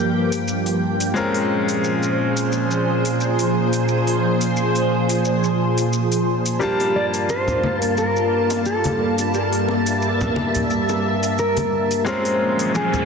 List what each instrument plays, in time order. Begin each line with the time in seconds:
Already playing: string machine G2 F3 A#3 G4 G5, grand piano G3 A#3 D4 F4 A4
0.32 open hi-hat, shaker
0.48 shaker
0.66 open hi-hat, shaker
1.00 open hi-hat, shaker
1.14 string machine A#2 F3 G#4 C5, grand piano G#3 C4 C#4 F4 A#4, shaker
1.35 open hi-hat, shaker
1.69 open hi-hat, shaker
1.84 shaker
2.03 shaker
2.37 open hi-hat, shaker
2.52 shaker
2.71 shaker
3.05 open hi-hat, shaker
3.21 shaker
3.39 open hi-hat, shaker
3.73 open hi-hat, shaker
3.89 shaker
4.07 open hi-hat, shaker
4.41 open hi-hat, shaker
4.57 shaker
4.75 open hi-hat, shaker
5.09 open hi-hat, shaker
5.25 shaker
5.44 shaker
5.78 open hi-hat, shaker
5.93 shaker
6.12 open hi-hat, shaker
6.46 open hi-hat, shaker
6.59 string machine G2 G3 A#3 F4 A5, grand piano G3 A#3 D4 F4 A5, clean electric guitar G4, shaker
6.80 open hi-hat, high bongo, shaker
6.96 clean electric guitar D5
7.14 open hi-hat, shaker
7.29 clean electric guitar C5, high bongo, shaker
7.48 low conga, shaker
7.64 high conga
7.82 clean electric guitar A#4, open hi-hat, shaker
7.97 clean electric guitar A#4, high bongo, shaker
8.16 shaker
8.50 open hi-hat, high bongo, shaker
8.66 clean electric guitar A4, shaker
8.84 open hi-hat, high conga, shaker
9.18 open hi-hat, high bongo, shaker
9.34 string machine E5, shaker
9.53 open hi-hat, shaker
9.68 high bongo
9.86 open hi-hat, shaker
10.02 shaker
10.21 low conga, shaker
10.36 high bongo, high conga
10.55 open hi-hat, low conga, shaker
10.70 shaker
10.89 high bongo, shaker
11.23 open hi-hat, shaker
11.38 clean electric guitar A#4, shaker
11.57 open hi-hat, high bongo, high conga, shaker
11.91 open hi-hat, shaker
12.05 string machine A#2 F3 G#3 C5, grand piano G#3 C4 C#4 F4 A#4, clean electric guitar C5, riser, high bongo, shaker
12.25 open hi-hat, shaker
12.59 open hi-hat, shaker
12.75 clean electric guitar G#4, high bongo, shaker
12.94 low conga, shaker